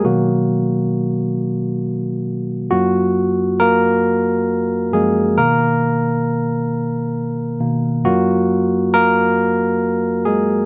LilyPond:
<<
  \new Staff \with { instrumentName = "Tine electric piano" } { \time 6/8 \key fis \major \tempo 4. = 45 <fis fis'>2~ <fis fis'>8 r8 | <fis fis'>4 <ais ais'>4. <gis gis'>8 | ais'2~ ais'8 r8 | <fis fis'>4 <ais ais'>4. <gis gis'>8 | }
  \new Staff \with { instrumentName = "Tine electric piano" } { \clef bass \time 6/8 \key fis \major <b, dis ais>8 r2 r8 | <fis, ais eis'>2~ <fis, ais eis'>8 <fis, eis ais>8 | <b, dis ais>4. r4 <b, dis ais>8 | <fis, ais eis'>4. r4. | }
>>